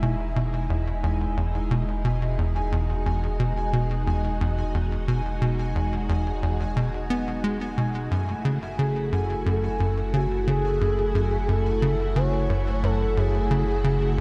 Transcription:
0.00 8.08 E1 medium
0.00 0.16 B2 loud
0.00 8.07 G#3 medium
0.00 8.07 D#4 medium
0.00 2.68 E4 medium
0.00 14.21 G#5 medium
0.36 0.68 B2 medium
0.70 0.92 E2 medium
1.03 1.26 E2 medium
1.37 1.60 E2 medium
1.71 1.84 B2 loud
2.05 2.37 B2 medium
2.38 2.61 E2 medium
2.72 2.95 E2 loud
2.72 8.07 F#4 medium
3.06 3.28 E2 medium
3.40 3.53 B2 loud
3.73 4.05 B2 medium
4.07 4.29 E2 medium
4.41 4.63 E2 loud
4.74 4.97 E2 medium
5.08 5.22 B2 loud
5.42 5.74 B2 loud
5.76 5.98 E2 medium
6.09 6.32 E2 loud
6.43 6.65 E2 medium
6.77 6.90 B2 medium
7.10 7.42 B3 loud
7.44 7.57 G#3 medium
7.78 8.10 B2 medium
8.11 14.21 F#1 medium
8.11 8.34 F#2 medium
8.11 14.21 A3 medium
8.11 14.21 E4 medium
8.11 14.21 F#4 medium
8.45 8.59 C#3 medium
8.79 9.11 C#3 loud
8.79 9.43 G#4 medium
9.12 9.35 F#2 medium
9.46 9.69 F#2 medium
9.46 10.16 A4 loud
9.80 10.03 F#2 medium
10.14 10.27 C#3 medium
10.14 10.47 F#4 medium
10.47 10.79 C#3 loud
10.47 11.50 G#4 loud
10.81 11.04 F#2 medium
11.15 11.37 F#2 loud
11.49 11.71 F#2 medium
11.49 12.18 A4 loud
11.82 11.96 C#3 loud
12.16 12.48 C#3 loud
12.16 12.85 C#5 loud
12.50 12.72 F#2 medium
12.83 13.06 F#2 loud
12.83 13.19 A4 loud
13.17 13.40 F#2 medium
13.17 14.17 G#4 loud
13.51 13.64 C#3 loud
13.84 14.16 C#3 loud

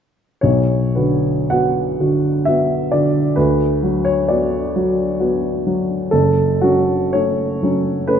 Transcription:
0.41 3.34 B1 soft
0.41 0.95 C#5 medium
0.95 1.47 D3 soft
0.95 1.48 F#4 soft
0.95 1.51 B4 soft
1.50 1.97 B3 soft
1.50 1.97 F#4 soft
1.50 2.47 F#5 medium
2.00 2.43 D3 soft
2.00 2.43 F#4 soft
2.45 2.89 B3 soft
2.45 2.89 F#4 soft
2.45 2.92 E5 medium
2.92 3.34 D3 soft
2.92 3.34 F#4 soft
2.92 3.37 D5 soft
3.36 6.07 D2 soft
3.36 4.04 B4 medium
3.83 4.24 F#3 soft
3.83 4.25 F#4 soft
4.05 4.28 C#5 medium
4.28 4.71 B3 soft
4.28 4.71 F#4 soft
4.28 5.65 D5 medium
4.76 5.16 F#3 soft
4.76 5.16 F#4 soft
5.20 5.62 B3 soft
5.20 5.61 F#4 soft
5.67 6.08 F#3 soft
5.67 6.08 F#4 soft
6.11 8.20 F#1 soft
6.11 6.62 A4 medium
6.61 7.11 F#3 soft
6.61 7.11 C#4 soft
6.61 7.14 F#4 medium
7.13 7.58 A3 soft
7.13 7.59 C#4 soft
7.13 8.07 C#5 medium
7.63 8.04 F#3 soft
7.63 8.04 C#4 soft
8.07 8.20 A3 soft
8.07 8.20 C#4 soft
8.07 8.20 B4 medium

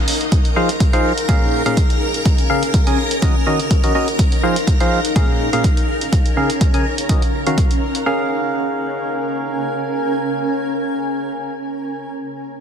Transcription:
0.00 0.33 D#4 medium
0.00 1.68 D#4 medium
0.00 0.33 D#5 medium
0.08 open hi-hat loud
0.21 closed hi-hat soft
0.32 8.07 A#4 medium
0.32 8.07 A#5 medium
0.32 kick loud
0.32 closed hi-hat medium
0.45 closed hi-hat soft
0.56 0.69 F3 medium
0.56 0.69 D#4 medium
0.56 0.69 G#4 medium
0.56 0.69 C5 medium
0.56 0.69 F5 loud
0.69 closed hi-hat soft
0.80 kick loud
0.80 closed hi-hat medium
0.93 1.13 F3 medium
0.93 1.13 D#4 medium
0.93 1.13 G#4 medium
0.93 1.13 C5 medium
0.93 1.13 F5 loud
0.93 closed hi-hat soft
1.18 closed hi-hat soft
1.29 1.63 A#2 medium
1.29 3.62 C#4 medium
1.29 1.63 C#4 medium
1.29 1.63 G#4 medium
1.29 1.63 A#4 medium
1.29 1.63 F5 medium
1.29 kick loud
1.29 closed hi-hat medium
1.66 1.77 A#2 medium
1.66 1.77 C#4 medium
1.66 1.77 G#4 medium
1.66 1.77 A#4 medium
1.66 3.62 A#4 medium
1.66 1.77 F5 loud
1.66 closed hi-hat soft
1.77 kick loud
1.77 closed hi-hat medium
1.90 closed hi-hat soft
2.14 closed hi-hat soft
2.25 kick loud
2.25 closed hi-hat medium
2.38 closed hi-hat soft
2.50 2.63 C#3 medium
2.50 2.63 C#4 medium
2.50 2.63 G#4 medium
2.50 2.63 A#4 medium
2.50 2.63 F5 medium
2.63 closed hi-hat soft
2.74 kick loud
2.74 closed hi-hat medium
2.87 2.98 C#3 medium
2.87 2.98 C#4 medium
2.87 2.98 G#4 medium
2.87 2.98 A#4 medium
2.87 2.98 G#5 medium
2.87 closed hi-hat soft
3.11 closed hi-hat soft
3.22 3.36 D#3 medium
3.22 3.36 C#4 medium
3.22 5.55 D#4 medium
3.22 3.36 F#4 medium
3.22 3.36 A#4 medium
3.22 3.36 D#5 medium
3.22 kick loud
3.22 closed hi-hat medium
3.47 3.60 D#3 medium
3.47 3.60 C#4 medium
3.47 3.60 F#4 medium
3.47 3.60 A#4 medium
3.47 3.60 D#5 loud
3.60 closed hi-hat soft
3.71 kick loud
3.71 closed hi-hat medium
3.84 3.93 D#3 medium
3.84 3.93 C#4 medium
3.84 3.93 F#4 medium
3.84 3.93 A#4 medium
3.84 3.93 D#5 medium
3.84 closed hi-hat soft
3.95 4.08 C#4 medium
3.95 4.08 F#4 medium
3.95 4.08 A#4 medium
3.95 4.08 D#5 medium
4.08 closed hi-hat soft
4.19 kick loud
4.19 closed hi-hat medium
4.32 closed hi-hat soft
4.43 4.57 F3 medium
4.43 4.57 D#4 medium
4.43 4.57 G#4 medium
4.43 4.57 C5 medium
4.43 4.57 F5 loud
4.56 closed hi-hat medium
4.67 kick loud
4.67 closed hi-hat medium
4.80 5.00 F3 medium
4.80 5.00 D#4 medium
4.80 5.00 G#4 medium
4.80 5.00 C5 medium
4.80 5.00 F5 loud
4.80 closed hi-hat soft
5.05 closed hi-hat medium
5.16 5.50 A#2 medium
5.16 5.50 C#4 medium
5.16 7.49 C#4 medium
5.16 5.50 G#4 medium
5.16 5.50 A#4 medium
5.16 5.50 F5 medium
5.16 kick loud
5.16 closed hi-hat medium
5.53 5.65 A#2 medium
5.53 5.65 C#4 medium
5.53 5.65 G#4 medium
5.53 5.65 A#4 medium
5.53 5.65 F5 medium
5.53 closed hi-hat soft
5.60 7.49 A#4 medium
5.64 kick loud
5.64 closed hi-hat medium
5.77 closed hi-hat soft
6.01 closed hi-hat soft
6.13 kick loud
6.13 closed hi-hat medium
6.26 closed hi-hat soft
6.37 6.50 C#3 medium
6.37 6.50 C#4 medium
6.37 6.50 G#4 medium
6.37 6.50 A#4 medium
6.37 6.50 F5 medium
6.50 closed hi-hat medium
6.61 kick loud
6.61 closed hi-hat medium
6.74 6.86 C#3 medium
6.74 6.86 C#4 medium
6.74 6.86 G#4 medium
6.74 6.86 A#4 medium
6.74 6.86 G#5 medium
6.74 closed hi-hat soft
6.98 closed hi-hat medium
7.09 7.23 D#3 medium
7.09 7.23 C#4 medium
7.09 7.23 F#4 medium
7.09 7.23 A#4 medium
7.09 7.23 D#5 medium
7.09 kick loud
7.09 closed hi-hat medium
7.22 closed hi-hat soft
7.47 7.58 D#3 medium
7.47 7.58 C#4 medium
7.47 7.58 F#4 medium
7.47 7.58 A#4 medium
7.47 7.58 F5 loud
7.47 closed hi-hat soft
7.58 kick loud
7.58 closed hi-hat medium
7.71 closed hi-hat soft
7.95 closed hi-hat soft
8.06 11.53 C#4 medium
8.06 11.54 C#4 medium
8.06 11.54 G#4 medium
8.06 11.54 A#4 medium
8.06 11.54 F5 medium
8.14 11.61 A#4 medium
8.21 11.69 G#5 medium

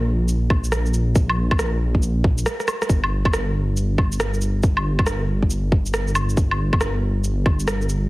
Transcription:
0.00 2.46 A#1 medium
0.28 shaker soft
0.50 kick loud
0.50 low woodblock soft
0.64 shaker medium
0.72 cross-stick medium
0.72 shaker medium
0.86 shaker soft
0.94 shaker medium
1.15 kick loud
1.15 shaker medium
1.30 low woodblock medium
1.51 kick loud
1.51 low woodblock medium
1.59 cross-stick medium
1.59 shaker medium
1.95 kick medium
2.03 shaker medium
2.24 kick loud
2.38 shaker medium
2.46 cross-stick loud
2.46 shaker medium
2.60 cross-stick soft
2.60 shaker soft
2.68 cross-stick medium
2.68 low woodblock medium
2.68 shaker medium
2.82 cross-stick medium
2.82 shaker soft
2.89 8.09 G1 medium
2.89 kick loud
2.89 shaker medium
3.04 low woodblock medium
3.25 kick loud
3.25 low woodblock medium
3.33 cross-stick loud
3.33 shaker medium
3.77 shaker medium
3.98 kick loud
3.98 low woodblock soft
4.12 shaker medium
4.20 cross-stick loud
4.20 shaker medium
4.34 shaker soft
4.41 shaker medium
4.63 kick loud
4.63 shaker medium
4.77 low woodblock medium
4.99 kick loud
4.99 low woodblock medium
5.06 cross-stick loud
5.06 shaker medium
5.42 kick medium
5.50 shaker medium
5.72 kick loud
5.86 shaker medium
5.94 cross-stick loud
5.94 shaker medium
6.08 shaker soft
6.15 low woodblock medium
6.15 shaker medium
6.29 shaker soft
6.37 kick loud
6.37 shaker medium
6.51 low woodblock soft
6.73 kick loud
6.73 low woodblock medium
6.81 cross-stick loud
6.81 shaker medium
7.24 shaker medium
7.46 kick loud
7.46 low woodblock soft
7.60 shaker medium
7.68 cross-stick loud
7.68 shaker medium
7.81 shaker soft
7.89 shaker medium

